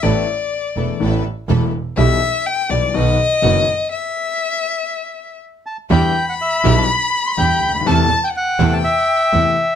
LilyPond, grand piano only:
\new Staff \with { instrumentName = "Grand piano" } { \clef bass \time 4/4 \key e \minor \tempo 4 = 123 <a,, a, e a b a'>8 r4 <e,, e, e a b a'>8 <a,, a, e a b a'>8 r8 <e,, e, e a b a'>8 r8 | <b,, b, e g b g'>8 r4 <b,, b, e g b g'>8 <b,, b, dis fis b fis'>8 r8 <fis,, fis, dis fis b fis'>8 r8 | r1 | <e, d e g b e'>8 r4 <b,, b, d g b e'>8 r4 <e, d e g b e'>8 r32 cis,32 d,32 dis,32 |
<e, c e a e'>8 r4 <e, c e a e'>8 r4 <e, c e a e'>8 r8 | }